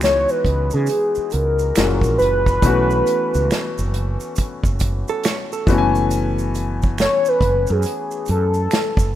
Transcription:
0.00 0.25 C#2 medium
0.00 1.71 E3 medium
0.00 1.71 G#3 medium
0.00 1.72 B3 medium
0.00 1.73 D#4 medium
0.00 1.76 F#4 medium
0.00 0.32 C#5 loud
0.00 finger snap medium
0.00 snare loud
0.00 maracas medium
0.04 closed hi-hat medium
0.29 0.75 B4 medium
0.29 maracas soft
0.45 0.69 C#2 medium
0.45 kick medium
0.45 closed hi-hat medium
0.71 0.88 C#3 medium
0.71 1.33 G#4 medium
0.71 maracas soft
0.86 closed hi-hat medium
0.86 maracas medium
1.15 muted fretless electric bass stroke soft
1.15 maracas soft
1.30 1.71 C#2 medium
1.30 2.18 A#4 loud
1.30 closed hi-hat medium
1.30 maracas soft
1.59 maracas soft
1.76 2.01 F#1 medium
1.76 2.64 A#2 medium
1.76 2.60 E3 medium
1.76 2.63 G#3 soft
1.76 2.64 C#4 medium
1.76 2.64 F#4 medium
1.76 finger snap medium
1.76 snare loud
1.76 closed hi-hat medium
1.76 maracas medium
2.01 2.17 A#1 medium
2.01 kick medium
2.01 maracas soft
2.18 2.58 F#1 medium
2.18 4.32 B4 loud
2.18 closed hi-hat medium
2.18 maracas soft
2.46 kick medium
2.46 maracas soft
2.62 3.01 B1 medium
2.62 5.63 E3 medium
2.62 5.63 A3 medium
2.62 5.64 B3 medium
2.62 5.64 C#4 medium
2.62 kick loud
2.62 closed hi-hat medium
2.62 maracas medium
2.67 5.65 F#4 medium
2.90 maracas soft
3.06 closed hi-hat medium
3.06 maracas soft
3.34 3.49 C#2 medium
3.34 maracas soft
3.51 finger snap medium
3.51 snare loud
3.51 closed hi-hat medium
3.51 maracas medium
3.78 4.16 F#1 medium
3.78 maracas soft
3.94 closed hi-hat medium
4.20 maracas medium
4.36 muted fretless electric bass stroke soft
4.36 kick medium
4.36 closed hi-hat medium
4.36 maracas medium
4.63 5.02 F#1 medium
4.63 kick medium
4.63 maracas soft
4.79 kick medium
4.79 closed hi-hat medium
4.79 maracas soft
5.08 5.24 A4 medium
5.08 maracas soft
5.23 5.50 C#5 medium
5.23 finger snap medium
5.23 snare medium
5.23 closed hi-hat medium
5.23 maracas medium
5.52 5.93 A4 medium
5.52 maracas soft
5.67 7.06 F#1 medium
5.67 9.11 E3 medium
5.67 9.11 A3 medium
5.67 9.12 B3 medium
5.67 9.12 C#4 medium
5.67 kick loud
5.67 closed hi-hat medium
5.67 maracas soft
5.72 5.77 F#4 medium
5.78 9.15 G#5 medium
5.95 maracas soft
6.11 closed hi-hat medium
6.11 maracas medium
6.39 maracas soft
6.55 closed hi-hat medium
6.55 maracas soft
6.82 kick medium
6.82 maracas soft
6.98 7.30 C#5 loud
6.98 finger snap medium
6.98 snare loud
6.98 closed hi-hat medium
6.98 maracas medium
7.25 7.73 B4 loud
7.25 maracas soft
7.41 7.65 F#1 medium
7.41 kick medium
7.41 closed hi-hat medium
7.67 7.83 F#2 medium
7.67 maracas soft
7.71 8.29 G#4 medium
7.83 closed hi-hat medium
7.83 maracas medium
8.11 maracas soft
8.26 8.67 F#2 medium
8.26 closed hi-hat medium
8.26 maracas soft
8.31 9.12 A4 loud
8.54 maracas soft
8.71 finger snap medium
8.71 snare loud
8.71 closed hi-hat medium
8.71 maracas medium
8.97 9.12 F#1 medium
8.97 kick medium
8.97 maracas soft

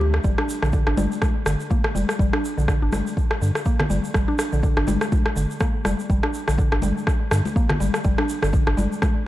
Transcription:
0.00 0.19 D2 medium
0.00 0.13 G4 medium
0.00 high conga medium
0.14 cross-stick medium
0.24 0.34 G1 loud
0.24 0.38 G3 medium
0.24 kick loud
0.24 shaker soft
0.38 0.48 D4 loud
0.38 cross-stick medium
0.49 shaker medium
0.62 0.79 A#1 medium
0.62 0.72 D3 medium
0.62 cross-stick medium
0.62 shaker soft
0.73 0.86 D3 medium
0.73 kick loud
0.73 shaker soft
0.87 0.95 G1 medium
0.87 0.97 D4 medium
0.87 cross-stick medium
0.97 1.07 G1 loud
0.97 1.05 G3 medium
0.97 high conga medium
0.97 shaker medium
1.12 shaker medium
1.22 kick loud
1.22 cross-stick medium
1.22 high conga medium
1.22 shaker soft
1.46 1.56 G1 medium
1.46 1.54 D3 medium
1.46 cross-stick medium
1.46 shaker medium
1.60 shaker medium
1.70 1.83 A#3 medium
1.70 kick loud
1.70 high conga medium
1.70 shaker soft
1.84 cross-stick medium
1.95 2.05 F1 medium
1.95 2.03 G3 medium
1.95 high conga medium
1.95 shaker medium
2.09 cross-stick medium
2.09 shaker medium
2.19 2.29 G1 medium
2.19 2.33 G3 medium
2.19 kick loud
2.19 shaker soft
2.33 2.43 D4 loud
2.33 cross-stick medium
2.45 shaker medium
2.58 2.74 A#1 medium
2.58 2.67 D3 medium
2.58 shaker medium
2.68 2.81 D3 medium
2.68 kick loud
2.68 cross-stick medium
2.68 shaker soft
2.82 2.90 G1 medium
2.82 2.92 D4 medium
2.93 3.02 G1 medium
2.93 3.00 G3 medium
2.93 cross-stick medium
2.93 high conga medium
2.93 shaker medium
3.07 shaker medium
3.17 kick loud
3.17 shaker soft
3.31 cross-stick medium
3.41 3.51 G2 medium
3.41 3.49 D3 medium
3.41 shaker medium
3.55 cross-stick medium
3.55 shaker soft
3.65 3.78 A#3 medium
3.65 kick loud
3.65 shaker soft
3.80 cross-stick medium
3.80 low conga loud
3.90 4.00 G1 medium
3.90 3.98 G3 medium
3.90 high conga medium
3.90 shaker medium
4.04 shaker medium
4.14 4.24 G1 medium
4.14 4.28 G3 medium
4.14 kick loud
4.14 cross-stick medium
4.14 shaker soft
4.28 4.38 D4 loud
4.39 cross-stick medium
4.39 shaker medium
4.53 4.69 A#1 medium
4.53 4.62 D3 medium
4.53 shaker medium
4.63 4.76 D3 medium
4.63 kick loud
4.63 shaker soft
4.77 4.85 G1 medium
4.77 4.87 D4 medium
4.77 cross-stick medium
4.87 4.98 G1 loud
4.87 4.95 G3 medium
4.87 high conga loud
4.87 shaker medium
5.01 cross-stick medium
5.01 shaker soft
5.12 kick loud
5.12 high conga medium
5.12 shaker soft
5.26 cross-stick medium
5.36 5.46 G1 medium
5.36 5.44 D3 medium
5.36 shaker medium
5.51 shaker medium
5.60 5.73 A#3 medium
5.60 kick loud
5.60 cross-stick medium
5.60 high conga medium
5.60 shaker soft
5.85 5.95 F1 loud
5.85 5.93 G3 medium
5.85 cross-stick medium
5.85 high conga medium
5.85 shaker medium
6.00 shaker medium
6.10 6.20 G1 medium
6.10 6.23 G3 medium
6.10 kick loud
6.10 shaker soft
6.23 6.33 D4 loud
6.23 cross-stick medium
6.34 shaker medium
6.48 6.64 A#1 medium
6.48 6.57 D3 medium
6.48 cross-stick medium
6.48 shaker medium
6.58 6.71 D3 medium
6.58 kick loud
6.58 shaker soft
6.72 6.80 G1 medium
6.72 6.82 D4 medium
6.72 cross-stick medium
6.82 6.93 G1 loud
6.82 6.90 G3 medium
6.82 high conga medium
6.82 shaker medium
6.98 shaker medium
7.07 kick loud
7.07 cross-stick medium
7.07 shaker soft
7.31 7.41 G2 medium
7.31 7.39 D3 medium
7.31 cross-stick medium
7.31 shaker medium
7.45 high conga medium
7.45 shaker medium
7.56 7.69 A#3 medium
7.56 kick loud
7.56 shaker soft
7.69 cross-stick medium
7.69 low conga loud
7.80 7.90 G1 medium
7.80 7.88 G3 medium
7.80 high conga medium
7.80 shaker medium
7.94 cross-stick medium
7.94 shaker soft
8.04 8.15 G1 medium
8.04 8.18 G3 medium
8.04 kick loud
8.04 shaker soft
8.18 8.29 D4 loud
8.18 cross-stick medium
8.29 shaker medium
8.42 8.59 G1 medium
8.42 8.52 D3 medium
8.42 cross-stick medium
8.42 shaker soft
8.53 8.66 D3 medium
8.53 kick loud
8.53 shaker soft
8.67 8.75 G1 medium
8.67 8.77 D4 medium
8.67 cross-stick medium
8.77 8.88 G1 loud
8.77 8.85 G3 medium
8.77 high conga medium
8.77 shaker medium
8.93 shaker medium
9.02 kick loud
9.02 cross-stick medium
9.02 high conga medium
9.02 shaker soft

